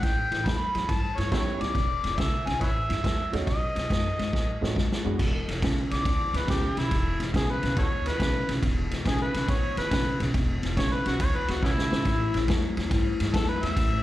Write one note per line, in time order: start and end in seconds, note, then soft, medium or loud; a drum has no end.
0.03 0.26 A1 medium
0.03 0.29 A2 medium
0.03 0.29 E3 medium
0.03 0.48 G5 medium
0.03 kick medium
0.03 snare soft
0.03 ride medium
0.32 0.43 A1 medium
0.32 0.45 A2 medium
0.32 0.45 E3 medium
0.32 snare soft
0.32 ride medium
0.46 0.69 E2 medium
0.46 0.72 A2 medium
0.46 0.72 F#3 medium
0.46 0.92 B5 medium
0.46 kick medium
0.46 snare loud
0.46 ride medium
0.75 0.86 E2 medium
0.75 0.88 A2 medium
0.75 0.88 F#3 medium
0.75 snare soft
0.75 ride medium
0.89 1.12 G2 medium
0.89 1.15 A2 medium
0.89 1.15 E3 medium
0.89 1.20 A5 medium
0.89 kick medium
0.89 snare soft
0.89 ride medium
1.18 1.29 G2 medium
1.18 1.31 A2 medium
1.18 1.31 E3 medium
1.18 1.32 C#5 medium
1.18 snare soft
1.18 ride medium
1.32 1.55 E2 medium
1.32 1.58 A2 medium
1.32 1.58 F#3 medium
1.32 1.75 B3 medium
1.32 1.75 C#4 medium
1.32 1.75 E4 medium
1.32 1.40 F#4 medium
1.32 1.75 G4 medium
1.32 1.40 A4 medium
1.32 1.63 C#5 medium
1.32 kick medium
1.32 snare medium
1.32 ride medium
1.61 1.73 D2 medium
1.61 1.74 A2 medium
1.61 1.74 F#3 medium
1.61 2.20 D5 medium
1.61 snare soft
1.61 ride medium
1.75 1.98 E1 medium
1.75 2.01 E2 medium
1.75 2.01 B2 medium
1.75 kick medium
1.75 snare soft
1.75 ride medium
2.04 2.15 E1 medium
2.04 2.17 E2 medium
2.04 2.17 B2 medium
2.04 snare soft
2.04 ride medium
2.18 2.41 B1 medium
2.18 2.44 E2 medium
2.18 2.45 C#3 medium
2.18 2.49 E5 medium
2.18 kick medium
2.18 snare medium
2.18 ride medium
2.46 2.59 B1 medium
2.46 2.60 E2 medium
2.46 2.60 C#3 medium
2.46 2.60 G#5 medium
2.46 snare soft
2.46 ride medium
2.61 2.84 A1 medium
2.61 2.87 A2 medium
2.61 2.87 E3 medium
2.61 2.70 B4 medium
2.61 2.70 C#5 medium
2.61 3.31 E5 medium
2.61 kick medium
2.61 snare soft
2.61 ride medium
2.89 3.02 G2 medium
2.89 3.03 A2 medium
2.89 3.03 E3 medium
2.89 snare soft
2.89 ride medium
3.04 3.27 E2 medium
3.04 3.30 A2 medium
3.04 3.30 F#3 medium
3.04 kick medium
3.04 snare medium
3.04 ride medium
3.32 3.45 E2 medium
3.32 3.45 A2 medium
3.32 3.46 F#3 medium
3.32 3.46 A3 medium
3.32 3.46 C#4 medium
3.32 3.46 D#4 medium
3.32 3.46 F#4 medium
3.32 snare soft
3.32 ride medium
3.46 3.70 B1 medium
3.46 3.73 B2 medium
3.46 3.73 F#3 medium
3.46 4.73 D#5 medium
3.46 kick medium
3.46 snare soft
3.46 ride medium
3.75 3.88 B1 medium
3.75 3.89 B2 medium
3.75 3.89 F#3 medium
3.75 snare soft
3.75 ride medium
3.90 4.13 F#2 medium
3.90 4.16 B2 medium
3.90 4.16 G#3 medium
3.90 kick medium
3.90 snare medium
3.90 ride medium
4.18 4.31 F#2 medium
4.18 4.32 B2 medium
4.18 4.32 G#3 medium
4.18 snare soft
4.18 ride medium
4.33 4.56 A2 medium
4.33 4.59 B2 medium
4.33 4.59 F#3 medium
4.33 kick medium
4.33 snare medium
4.61 4.74 A2 medium
4.61 4.74 B2 medium
4.61 4.75 F#3 medium
4.61 4.75 A3 medium
4.61 4.75 C#4 medium
4.61 4.75 D#4 medium
4.61 4.75 F#4 medium
4.61 snare medium
4.76 4.99 F#2 medium
4.76 5.02 B2 medium
4.76 5.02 G#3 medium
4.76 kick medium
4.76 snare medium
4.92 snare medium
5.04 5.18 E2 medium
5.04 5.17 F#2 medium
5.04 5.18 B2 medium
5.04 5.18 G#3 soft
5.04 5.18 G#3 medium
5.04 5.18 B3 medium
5.04 5.18 D4 medium
5.04 5.18 F#4 medium
5.19 5.42 E1 medium
5.19 5.45 E2 medium
5.19 5.45 B2 loud
5.19 kick medium
5.19 snare soft
5.19 crash loud
5.48 5.59 E1 medium
5.48 5.61 E2 medium
5.48 5.61 B2 medium
5.48 snare soft
5.48 ride medium
5.62 5.85 B1 medium
5.62 5.88 E2 medium
5.62 5.88 C#3 medium
5.62 kick medium
5.62 snare loud
5.62 ride medium
5.91 6.02 B1 medium
5.91 6.04 E2 medium
5.91 6.04 C#3 medium
5.91 6.38 D5 medium
5.91 snare soft
5.91 ride medium
6.05 6.28 D2 medium
6.05 6.31 E2 medium
6.05 6.31 B2 medium
6.05 kick medium
6.05 snare soft
6.05 ride medium
6.33 6.45 D2 medium
6.33 6.46 E2 medium
6.33 6.47 B2 medium
6.33 6.49 B4 medium
6.33 snare soft
6.33 ride medium
6.47 6.71 B1 medium
6.47 6.74 E2 medium
6.47 6.74 C#3 medium
6.47 6.80 G4 medium
6.47 kick medium
6.47 snare loud
6.47 ride medium
6.76 6.88 B1 medium
6.76 6.89 E2 medium
6.76 6.90 C#3 medium
6.76 7.19 E4 medium
6.76 snare soft
6.76 ride medium
6.91 7.14 E1 medium
6.91 7.17 E2 medium
6.91 7.17 B2 medium
6.91 kick medium
6.91 snare soft
6.91 ride medium
7.19 7.31 E1 medium
7.19 7.32 E2 medium
7.19 7.33 B2 medium
7.19 snare soft
7.19 ride medium
7.33 7.57 B1 medium
7.33 7.59 E2 medium
7.33 7.60 C#3 medium
7.33 7.49 G#4 medium
7.33 kick medium
7.33 snare loud
7.33 ride medium
7.51 7.77 B4 medium
7.62 7.74 B1 medium
7.62 7.75 E2 medium
7.62 7.76 C#3 medium
7.62 snare soft
7.62 ride medium
7.77 8.00 D2 medium
7.77 8.03 E2 medium
7.77 8.03 B2 medium
7.77 7.86 F#4 medium
7.77 7.87 A4 medium
7.77 8.10 C#5 medium
7.77 kick medium
7.77 snare soft
7.77 ride medium
8.05 8.17 D2 medium
8.05 8.18 E2 medium
8.05 8.18 B2 medium
8.05 8.48 B4 medium
8.05 snare soft
8.05 ride medium
8.20 8.42 B1 medium
8.20 8.46 E2 medium
8.20 8.46 C#3 medium
8.20 kick medium
8.20 snare loud
8.20 ride medium
8.48 8.60 B1 medium
8.48 8.61 E2 medium
8.48 8.61 C#3 medium
8.48 snare soft
8.48 ride medium
8.62 8.85 E1 medium
8.62 8.88 E2 medium
8.62 8.89 B2 medium
8.62 kick medium
8.62 snare soft
8.62 ride medium
8.91 9.03 E1 medium
8.91 9.04 E2 medium
8.91 9.04 B2 medium
8.91 snare soft
8.91 ride medium
9.05 9.28 B1 medium
9.05 9.31 E2 medium
9.05 9.32 C#3 medium
9.05 9.20 G#4 medium
9.05 kick medium
9.05 snare loud
9.05 ride medium
9.22 9.52 B4 medium
9.34 9.46 B1 medium
9.34 9.46 E2 medium
9.34 9.47 C#3 medium
9.34 snare soft
9.34 ride medium
9.47 9.71 D2 medium
9.47 9.74 E2 medium
9.47 9.74 B2 medium
9.47 9.77 C#5 medium
9.47 kick medium
9.47 snare soft
9.47 ride medium
9.77 9.88 D2 medium
9.77 9.90 E2 medium
9.77 9.90 B2 medium
9.77 10.19 B4 loud
9.77 snare soft
9.77 ride medium
9.91 10.14 B1 medium
9.91 10.17 E2 medium
9.91 10.17 C#3 medium
9.91 kick medium
9.91 snare loud
9.91 ride medium
10.20 10.31 B1 medium
10.20 10.33 E2 medium
10.20 10.33 C#3 medium
10.20 snare soft
10.20 ride medium
10.34 10.57 E1 loud
10.34 10.60 E2 medium
10.34 10.60 B2 medium
10.34 kick medium
10.34 snare soft
10.34 ride medium
10.63 10.74 E1 medium
10.63 10.76 E2 medium
10.63 10.76 B2 medium
10.63 snare soft
10.63 ride medium
10.77 11.00 B1 medium
10.77 11.03 E2 medium
10.77 11.03 C#3 loud
10.77 10.94 C#5 loud
10.77 kick medium
10.77 snare loud
10.77 ride medium
10.93 11.06 B4 medium
11.05 11.17 B1 medium
11.05 11.18 E2 medium
11.05 11.19 C#3 medium
11.05 11.20 F#4 loud
11.05 snare soft
11.05 ride medium
11.20 11.43 D2 medium
11.20 11.46 E2 medium
11.20 11.46 B2 medium
11.20 11.37 C#5 medium
11.20 kick medium
11.20 snare soft
11.20 ride medium
11.35 11.52 B4 medium
11.48 11.60 D2 medium
11.48 11.61 E2 medium
11.48 11.62 B2 medium
11.48 11.63 F#4 medium
11.48 snare soft
11.48 ride medium
11.62 11.85 B1 medium
11.62 11.88 E2 medium
11.62 11.89 C#3 medium
11.62 11.70 B3 medium
11.62 11.72 C#4 medium
11.62 12.47 E4 loud
11.62 kick medium
11.62 snare medium
11.78 snare medium
11.92 12.03 G#1 medium
11.92 12.04 E2 medium
11.92 12.05 C#3 medium
11.92 snare loud
12.05 12.28 A1 medium
12.05 12.32 A2 medium
12.05 12.32 E3 medium
12.05 kick medium
12.05 snare soft
12.05 ride medium
12.34 12.46 A1 medium
12.34 12.47 A2 medium
12.34 12.47 E3 medium
12.34 snare soft
12.34 ride medium
12.48 12.71 E2 medium
12.48 12.74 A2 medium
12.48 12.75 F#3 medium
12.48 kick medium
12.48 snare loud
12.48 ride medium
12.77 12.88 E2 medium
12.77 12.90 A2 medium
12.77 12.90 F#3 medium
12.77 snare soft
12.77 ride medium
12.91 13.14 G2 medium
12.91 13.17 A2 medium
12.91 13.17 E3 medium
12.91 kick medium
12.91 snare soft
12.91 ride medium
13.20 13.31 G2 medium
13.20 13.33 A2 medium
13.20 13.33 E3 medium
13.20 snare soft
13.20 ride medium
13.34 13.56 E2 medium
13.34 13.60 A2 medium
13.34 13.60 F#3 medium
13.34 13.48 A4 loud
13.34 kick medium
13.34 snare loud
13.34 ride medium
13.49 13.65 B4 medium
13.63 13.74 E2 medium
13.63 13.76 A2 medium
13.63 13.76 F#3 medium
13.63 14.03 E5 medium
13.63 snare soft
13.63 ride medium
13.77 13.99 A1 medium
13.77 14.03 A2 medium
13.77 14.03 E3 loud
13.77 kick medium
13.77 snare soft
13.77 ride medium